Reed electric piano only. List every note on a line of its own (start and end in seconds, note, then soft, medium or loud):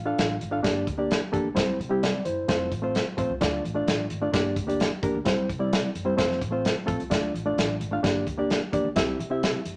0.06 0.34 D4 medium
0.06 0.34 F4 medium
0.06 0.35 A4 medium
0.06 0.35 F5 medium
0.51 0.59 D4 medium
0.51 0.59 F4 medium
0.51 0.59 A4 medium
0.51 0.60 F5 medium
0.63 0.85 A#3 medium
0.63 0.85 D4 medium
0.63 0.85 G4 medium
0.63 0.85 D5 medium
0.98 1.20 A#3 medium
0.98 1.20 D4 medium
0.98 1.20 G4 medium
0.98 1.20 D5 medium
1.32 1.47 A#3 medium
1.32 1.47 D4 medium
1.32 1.47 G4 medium
1.32 1.47 A4 medium
1.55 1.77 G3 medium
1.55 1.77 C4 medium
1.55 1.77 E4 medium
1.55 1.78 C5 medium
1.89 2.19 G3 medium
1.89 2.19 C4 medium
1.89 2.02 E4 medium
1.89 2.03 G4 medium
2.03 2.25 D5 medium
2.25 2.70 E4 medium
2.25 2.48 C5 medium
2.48 2.70 A3 medium
2.48 2.70 C4 medium
2.48 2.70 F4 medium
2.48 2.70 C5 medium
2.82 3.04 A3 medium
2.82 3.04 C4 medium
2.82 3.05 F4 medium
2.82 3.05 C5 medium
3.17 3.32 A3 medium
3.17 3.32 C4 medium
3.17 3.32 F4 medium
3.17 3.33 C5 medium
3.41 3.62 A3 medium
3.41 3.63 D4 medium
3.41 3.63 F4 medium
3.41 3.63 D5 medium
3.75 4.04 A3 medium
3.75 4.04 D4 medium
3.75 4.04 F4 medium
3.75 4.05 D5 medium
4.21 4.29 A3 medium
4.21 4.29 D4 medium
4.21 4.30 F4 medium
4.21 4.30 D5 medium
4.32 4.55 A#3 medium
4.32 4.55 D4 medium
4.32 4.55 G4 medium
4.32 4.55 D5 medium
4.67 4.89 A#3 medium
4.67 4.90 D4 medium
4.67 4.90 G4 medium
4.67 4.90 D5 medium
5.03 5.17 A#3 medium
5.03 5.17 D4 medium
5.03 5.17 G4 medium
5.03 5.18 A#4 medium
5.25 5.47 G3 medium
5.25 5.47 C4 medium
5.25 5.48 E4 medium
5.25 5.48 C5 medium
5.59 5.89 G3 medium
5.59 5.89 C4 medium
5.59 5.89 E4 medium
5.59 5.89 D5 medium
6.05 6.13 G3 medium
6.05 6.14 C4 medium
6.05 6.14 E4 medium
6.05 6.14 C5 medium
6.17 6.39 A3 medium
6.17 6.39 C4 medium
6.17 6.40 F4 medium
6.17 6.40 C5 medium
6.51 6.74 A3 medium
6.51 6.74 C4 medium
6.51 6.74 F4 medium
6.51 6.74 C5 medium
6.86 7.01 A3 medium
6.86 7.02 C4 medium
6.86 7.02 F4 medium
6.86 7.02 A4 medium
7.10 7.32 A3 medium
7.10 7.32 D4 medium
7.10 7.32 F4 medium
7.10 7.33 D5 medium
7.45 7.74 A3 medium
7.45 7.74 D4 medium
7.45 7.75 F4 medium
7.45 7.75 D5 medium
7.91 7.99 A3 medium
7.91 7.99 D4 medium
7.91 8.00 F4 medium
7.91 8.00 F5 medium
8.03 8.25 A#3 medium
8.03 8.25 D4 medium
8.03 8.25 G4 medium
8.03 8.25 D5 medium
8.38 8.59 A#3 medium
8.38 8.60 D4 medium
8.38 8.60 G4 medium
8.38 8.60 D5 medium
8.73 8.87 A#3 medium
8.73 8.87 D4 medium
8.73 8.88 G4 medium
8.73 8.88 D5 medium
8.96 9.17 C4 medium
8.96 9.17 E4 medium
8.96 9.17 G4 medium
8.96 9.18 E5 medium
9.30 9.59 C4 medium
9.30 9.59 E4 medium
9.30 9.59 G4 medium
9.30 9.60 E5 medium